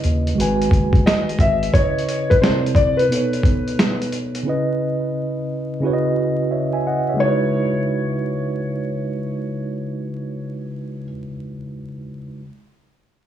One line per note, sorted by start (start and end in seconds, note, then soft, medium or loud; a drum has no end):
0.00 0.35 C#3 medium
0.00 0.36 C#4 medium
0.00 0.37 E4 medium
0.00 0.37 B4 medium
0.00 0.42 D#5 medium
0.00 closed hi-hat medium
0.04 0.34 D#2 medium
0.27 closed hi-hat soft
0.35 0.68 G#1 loud
0.35 1.70 D#3 medium
0.35 1.70 G#3 medium
0.35 1.71 F#4 medium
0.40 1.72 B4 medium
0.40 1.73 G#5 medium
0.40 closed hi-hat medium
0.62 closed hi-hat soft
0.71 1.01 F#1 medium
0.71 kick medium
0.71 closed hi-hat medium
0.93 kick medium
0.93 closed hi-hat soft
1.06 1.41 D#5 loud
1.06 snare loud
1.06 closed hi-hat medium
1.29 closed hi-hat soft
1.39 1.69 G#1 medium
1.39 1.75 E5 loud
1.39 kick medium
1.39 closed hi-hat medium
1.63 closed hi-hat soft
1.73 2.41 C#3 medium
1.73 2.42 C#4 medium
1.73 2.41 E4 medium
1.73 2.42 B4 medium
1.73 2.31 C#5 loud
1.73 2.43 D#5 medium
1.73 kick loud
1.73 closed hi-hat medium
1.99 closed hi-hat soft
2.09 closed hi-hat medium
2.30 2.35 B4 medium
2.30 kick medium
2.30 closed hi-hat soft
2.41 3.10 C3 medium
2.41 3.10 C4 medium
2.41 3.10 E4 medium
2.41 3.11 A#4 medium
2.41 2.73 C5 medium
2.41 3.11 D5 medium
2.41 snare loud
2.41 closed hi-hat medium
2.66 closed hi-hat soft
2.75 2.98 D5 loud
2.75 kick medium
2.75 closed hi-hat medium
2.97 4.08 B4 medium
2.97 closed hi-hat soft
3.09 4.43 B2 medium
3.09 4.44 B3 medium
3.09 4.44 D#4 medium
3.09 closed hi-hat medium
3.13 4.45 A4 medium
3.13 4.46 C#5 medium
3.33 closed hi-hat soft
3.43 kick medium
3.43 closed hi-hat medium
3.68 closed hi-hat soft
3.79 snare loud
3.79 closed hi-hat medium
4.02 closed hi-hat soft
4.12 closed hi-hat medium
4.35 closed hi-hat soft
4.43 5.78 C#3 medium
4.43 5.79 C#4 medium
4.43 5.80 E4 medium
4.48 5.81 B4 medium
4.48 5.81 D#5 medium
5.81 7.13 C#3 medium
5.81 7.16 C#4 medium
5.81 7.16 E4 medium
5.81 7.17 F#4 medium
5.85 7.18 B4 medium
5.85 5.93 C#5 medium
5.93 6.55 D#5 medium
6.51 6.72 C#5 medium
6.51 6.72 E5 medium
6.73 6.85 E5 medium
6.73 6.84 G#5 medium
6.87 7.07 D#5 medium
6.87 7.07 F#5 medium
7.09 7.41 C#5 soft
7.09 7.40 E5 medium
7.14 10.98 C#3 medium
7.14 11.00 G#3 medium
7.19 11.03 D#4 medium
7.19 11.05 E4 medium
7.19 11.04 C#5 medium
7.24 11.07 F#4 medium
7.24 11.10 B4 medium